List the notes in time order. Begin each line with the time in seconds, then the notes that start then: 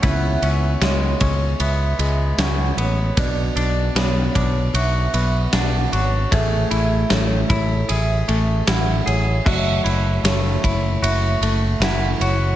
Already playing: C#4
0.02 C#2 C#3 B3 E4 B4 E5, kick, ride
0.42 C#2 C#4, ride
0.81 C#2 G#3 C#5, snare, ride
1.20 C#2 C#4, kick, ride
1.60 C#2 B3 E5, ride
1.99 C#2 G#3, ride
2.38 C#2 C#4 F#5, snare, ride
2.77 A1 B3 C#5, ride
3.17 B1 B2 D4 D5, kick, ride
3.56 B1 D4, ride
3.95 B1 B3 C#5, snare, ride
4.35 B1 D4, kick, ride
4.74 B1 F#4 E5, ride
5.14 B1 B3, ride
5.53 B1 D4 F#5, snare, ride
5.93 G#1 F#4 C#5, ride
6.31 A1 A3 G#4 E5, kick, ride
6.71 A1 E4, ride
7.09 A1 A3 C#5, snare, ride
7.49 A1 E4, kick, ride
7.89 A1 G#4 E5, ride
8.28 A1 A3, ride
8.67 A1 E4 F#5, snare, ride
9.06 A1 G#4 C#5, ride
9.45 F#1 F#3 A3 F#4 E5, kick, crash
9.84 F#1 E4, ride
10.24 F#1 A3 C#5, snare, ride
10.64 F#1 E4, kick, ride
11.02 F#1 F#4 E5, ride
11.41 F#1 A3, ride
11.80 F#1 E4 F#5, snare, ride
12.20 F#1 F#4 C#5, ride